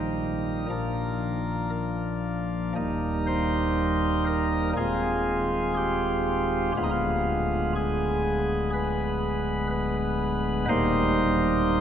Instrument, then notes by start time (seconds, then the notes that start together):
pipe organ
Already playing: A#1 A#2 D#3 G3 D#4 A#4
0.69 A#1 A#2 F3 A#3 D4
2.76 D#1 D#2 G3 A#3 D#4
3.26 C5
4.26 A#4
4.77 D#1 D#2 G#3 C4 F4 G#4
5.77 G4
6.77 D1 D2 G#3 B3 F4
6.83 D#4
6.91 F4
7.76 G#4
8.73 B4
9.70 B4
10.68 D#1 D#2 G3 A#3 D#4 C5